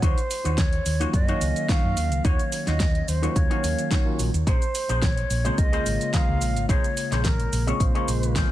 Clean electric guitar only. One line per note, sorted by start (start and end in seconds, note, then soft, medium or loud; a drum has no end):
0.02 0.17 D#4 loud
0.02 0.17 F4 medium
0.02 0.18 F#4 loud
0.02 0.18 C#5 loud
0.30 muted clean electric guitar stroke soft
0.44 0.58 D#4 medium
0.44 0.58 F4 medium
0.44 0.58 F#4 medium
0.44 0.59 C#5 loud
0.73 muted clean electric guitar stroke soft
1.00 1.13 D#4 medium
1.00 1.14 F4 medium
1.00 1.14 F#4 medium
1.00 1.14 C#5 loud
1.28 1.41 D#4 loud
1.28 1.41 F4 loud
1.28 1.42 F#4 loud
1.28 1.42 C#5 loud
1.55 muted clean electric guitar stroke soft
1.69 1.97 D#4 medium
1.69 1.97 F4 medium
1.69 1.97 F#4 medium
1.69 1.97 C#5 loud
2.24 2.39 D#4 loud
2.24 2.39 F4 loud
2.24 2.40 F#4 medium
2.24 2.40 C#5 loud
2.52 muted clean electric guitar stroke soft
2.67 2.80 D#4 medium
2.67 2.80 F4 medium
2.67 2.81 F#4 medium
2.67 2.81 C#5 loud
2.95 muted clean electric guitar stroke soft
3.22 3.36 D#4 medium
3.22 3.36 F4 medium
3.22 3.36 F#4 medium
3.22 3.36 C#5 loud
3.50 3.63 D#4 loud
3.50 3.64 F4 loud
3.50 3.64 F#4 loud
3.50 3.64 C#5 loud
3.78 muted clean electric guitar stroke soft
3.91 4.19 D#4 medium
3.91 4.19 F4 medium
3.91 4.19 F#4 medium
3.91 4.20 C#5 loud
4.47 4.62 C#4 loud
4.47 4.62 G#4 medium
4.47 4.62 A#4 loud
4.47 4.62 C5 loud
4.74 muted clean electric guitar stroke soft
4.89 5.02 C#4 medium
4.89 5.03 G#4 medium
4.89 5.03 A#4 medium
4.89 5.03 C5 loud
5.17 muted clean electric guitar stroke soft
5.44 5.58 C#4 medium
5.44 5.58 G#4 medium
5.44 5.58 A#4 medium
5.44 5.59 C5 loud
5.72 5.86 C#4 loud
5.72 5.86 G#4 loud
5.72 5.86 A#4 medium
5.72 5.86 C5 loud
6.00 muted clean electric guitar stroke soft
6.13 6.41 C#4 medium
6.13 6.42 G#4 medium
6.13 6.42 A#4 medium
6.13 6.42 C5 medium
6.69 6.84 C#4 loud
6.69 6.84 G#4 medium
6.69 6.84 A#4 loud
6.69 6.84 C5 loud
6.97 muted clean electric guitar stroke soft
7.12 7.25 C#4 medium
7.12 7.25 G#4 medium
7.12 7.25 A#4 medium
7.12 7.26 C5 loud
7.39 muted clean electric guitar stroke soft
7.67 7.80 C#4 medium
7.67 7.81 G#4 medium
7.67 7.81 A#4 medium
7.67 7.81 C#5 loud
7.95 8.08 C#4 loud
7.95 8.08 G#4 loud
7.95 8.08 A#4 medium
7.95 8.09 C#5 loud
8.22 muted clean electric guitar stroke soft
8.36 8.52 C#4 loud
8.36 8.52 G#4 medium
8.36 8.52 A#4 medium
8.36 8.52 C5 loud